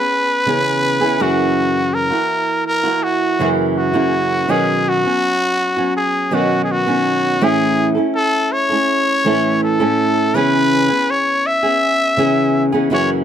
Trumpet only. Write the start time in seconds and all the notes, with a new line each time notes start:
Already playing: B4
1.22 F#4
1.94 A#4
2.67 A#4
3.03 F#4
3.77 F#4
4.50 G#4
4.89 F#4
5.97 G#4
6.34 F#4
6.64 G#4
6.71 F#4
7.44 G#4
8.15 A4
8.52 C#5
9.64 A4
10.35 B4
11.11 C#5
11.47 E5
12.93 C#5